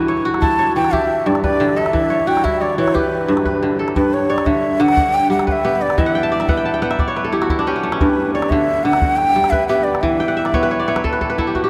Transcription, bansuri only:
0.41 0.73 A5 loud
0.76 0.95 G5 loud
0.93 1.28 E5 medium
1.27 1.42 D5 medium
1.43 1.79 D5 loud
1.77 2.29 E5 medium
2.28 2.46 G5 medium
2.44 2.63 E5 medium
2.61 2.78 D5 medium
2.79 2.96 C#5 loud
2.94 3.79 B4 medium
3.96 4.15 B4 medium
4.14 4.32 C#5 medium
4.30 4.48 D5 medium
4.46 4.82 E5 medium
4.81 5.16 F#5 loud
5.14 5.31 G5 loud
5.32 5.47 F#5 medium
5.48 5.53 F#5 medium
5.52 5.83 E5 loud
5.82 6.01 D5 loud
5.99 7.00 E5 medium
8.00 8.31 B4 medium
8.34 8.51 D5 medium
8.50 8.85 E5 loud
8.84 9.18 F#5 loud
9.16 9.52 G5 loud
9.50 9.67 E5 loud
9.68 9.85 E5 loud
9.84 10.03 D5 medium
10.01 11.03 E5 medium

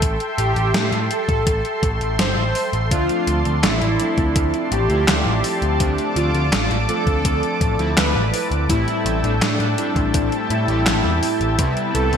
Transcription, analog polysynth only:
2.91 3.41 F3 medium
2.91 3.41 A3 medium
2.91 3.41 C4 medium
2.91 3.41 D4 loud
3.46 3.55 F3 medium
3.46 3.55 A3 medium
3.46 3.55 C4 medium
3.46 3.55 D4 medium
4.00 4.86 F3 medium
4.00 4.87 A3 medium
4.00 4.87 C4 medium
4.00 4.87 D4 loud
4.90 5.04 F3 loud
4.90 5.04 A3 medium
4.90 5.04 C4 medium
4.90 5.04 E4 loud
5.08 5.76 F3 medium
5.08 5.76 A3 medium
5.08 5.76 C4 medium
5.08 5.76 E4 medium
5.80 6.30 F3 medium
5.80 6.30 A3 medium
5.80 6.30 C4 medium
5.80 6.30 D4 loud
6.35 6.44 F3 medium
6.35 6.44 A3 medium
6.35 6.44 C4 medium
6.35 6.44 D4 medium
6.89 7.76 F3 medium
6.89 7.76 A3 medium
6.89 7.76 C4 medium
6.89 7.76 D4 loud
7.79 7.93 F3 loud
7.79 7.93 A3 medium
7.79 7.93 C4 medium
7.79 7.93 E4 loud
7.97 8.65 F3 medium
7.97 8.65 A3 medium
7.97 8.65 C4 medium
7.97 8.65 E4 medium
8.69 9.19 A2 loud
8.69 9.19 G3 medium
8.69 9.19 A3 medium
8.69 9.19 C4 medium
8.69 9.19 E4 loud
9.24 9.33 A2 medium
9.24 9.33 G3 medium
9.24 9.33 A3 medium
9.24 9.33 C4 medium
9.24 9.33 D4 medium
9.78 10.65 A2 medium
9.78 10.65 G3 medium
9.78 10.65 A3 medium
9.78 10.65 C4 medium
9.78 10.65 E4 loud
10.68 10.82 A2 loud
10.68 10.82 G3 medium
10.68 10.82 A3 medium
10.68 10.82 C4 medium
10.68 10.82 G4 loud
10.86 11.54 A2 medium
10.86 11.54 G3 medium
10.86 11.54 A3 medium
10.86 11.54 C4 medium
10.86 11.54 G4 medium
11.59 12.09 C3 loud
11.59 12.09 G3 medium
11.59 12.09 B3 medium
11.59 12.09 C4 medium
11.59 12.09 E4 loud
12.13 12.17 C3 medium
12.13 12.17 G3 medium
12.13 12.17 B3 medium
12.13 12.17 C4 medium
12.13 12.17 D4 medium

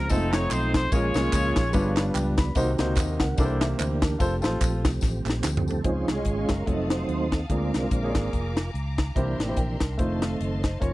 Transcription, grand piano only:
0.10 0.16 G#3 medium
0.10 0.78 C4 medium
0.10 0.78 D#4 medium
0.10 0.79 F4 medium
0.10 0.79 C5 medium
0.15 0.80 A3 medium
0.92 1.53 A#2 medium
0.92 1.05 G#3 medium
0.92 1.05 A#3 medium
0.92 1.05 C#4 medium
0.92 1.05 F4 medium
0.92 1.05 A#4 medium
1.14 1.59 G#3 medium
1.14 1.59 A#3 medium
1.14 1.60 C#4 medium
1.14 1.60 F4 medium
1.14 1.60 C#5 medium
1.73 2.34 G2 medium
1.73 2.41 G3 medium
1.73 2.41 B3 medium
1.73 2.42 D4 medium
1.73 2.42 F4 medium
1.73 2.42 B4 loud
1.97 2.13 F5 medium
2.14 2.36 G5 medium
2.39 2.55 B5 medium
2.55 3.16 C3 medium
2.55 2.68 A#3 medium
2.55 2.69 C4 medium
2.55 2.69 D#4 medium
2.55 2.69 F#4 medium
2.55 2.69 C5 loud
2.79 3.23 A#3 medium
2.79 3.24 C4 medium
2.79 3.24 D#4 medium
2.79 2.97 F#4 medium
2.79 2.97 C5 loud
2.98 3.20 F#4 medium
2.98 3.19 D#5 medium
3.21 3.38 A#4 medium
3.21 3.59 F#5 medium
3.38 3.99 C3 medium
3.38 4.06 A#3 loud
3.38 3.62 D4 loud
3.38 3.62 E4 medium
3.38 3.62 A4 medium
3.38 3.44 A#4 medium
3.45 3.65 C5 loud
3.61 3.78 G4 medium
3.61 3.78 E5 medium
3.79 4.01 E4 medium
3.79 4.01 C5 medium
4.03 4.42 D4 medium
4.03 4.41 A#4 medium
4.19 4.32 F4 medium
4.19 4.33 A4 medium
4.19 4.33 C5 loud
4.42 4.87 F4 medium
4.42 4.87 A4 medium
4.42 4.88 C5 medium
5.84 6.45 C#3 medium
5.84 6.03 G#3 medium
5.84 6.04 C#4 medium
5.84 6.04 F4 medium
5.84 6.04 C5 medium
6.16 6.26 G#3 medium
6.16 6.26 C#4 medium
6.16 6.27 F4 medium
6.16 6.27 D#5 medium
6.37 6.67 G#3 medium
6.37 6.67 C#4 medium
6.37 6.65 F4 medium
6.37 6.67 D#5 medium
6.66 7.35 A3 medium
6.66 7.35 F4 medium
6.66 7.35 F#4 medium
6.66 6.73 C#5 medium
6.72 7.38 D#5 medium
7.49 8.11 D3 medium
7.49 7.69 A#3 medium
7.49 7.69 F4 medium
7.49 7.69 G#4 medium
7.49 7.70 D5 medium
7.82 7.92 A#3 medium
7.82 7.92 F4 medium
7.82 7.92 G#4 medium
7.82 7.93 A#4 medium
8.03 8.49 A#3 medium
8.03 8.49 F4 medium
8.03 8.50 G#4 medium
8.03 8.09 C#5 medium
8.10 8.52 D5 medium
9.16 9.77 C3 medium
9.16 9.35 A#3 medium
9.16 9.35 E4 medium
9.16 9.36 G4 medium
9.16 9.36 C5 medium
9.48 9.58 A#3 medium
9.48 9.57 E4 medium
9.48 9.57 G4 medium
9.48 9.58 C5 medium
9.57 9.79 A#4 medium
9.57 9.80 G5 medium
9.81 10.20 D4 medium
9.81 10.20 A#4 medium
9.98 10.67 A3 medium
9.98 10.22 D#4 medium
9.98 10.22 F4 medium
9.98 10.23 C5 medium
10.22 10.39 A4 soft
10.22 10.39 F5 medium
10.39 10.62 D#5 medium
10.64 10.93 D#4 soft
10.64 10.93 C5 medium
10.80 10.93 A#3 medium
10.80 10.93 C#4 medium
10.80 10.93 F4 medium
10.80 10.93 C#5 medium

